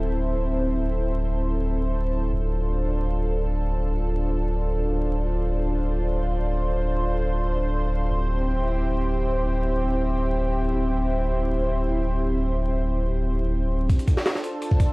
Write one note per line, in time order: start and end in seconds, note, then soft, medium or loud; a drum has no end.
0.00 2.31 D1 medium
0.00 2.29 C4 medium
0.00 2.29 E4 medium
0.00 8.07 A4 medium
0.00 2.29 C5 medium
2.33 8.10 D1 medium
2.33 8.07 D4 medium
2.33 8.07 F4 medium
2.33 13.85 C5 medium
8.11 13.88 D1 medium
8.11 13.85 C4 medium
8.11 13.85 E4 medium
8.11 13.85 G4 medium
13.89 14.93 D4 medium
13.89 14.93 F4 medium
13.89 14.93 A4 medium
13.89 14.93 C5 medium
13.89 kick loud
13.89 closed hi-hat medium
13.99 closed hi-hat soft
14.08 kick medium
14.08 closed hi-hat medium
14.17 snare soft
14.26 snare loud
14.26 closed hi-hat medium
14.35 snare soft
14.44 closed hi-hat medium
14.62 closed hi-hat medium
14.71 kick medium
14.80 kick medium
14.80 closed hi-hat medium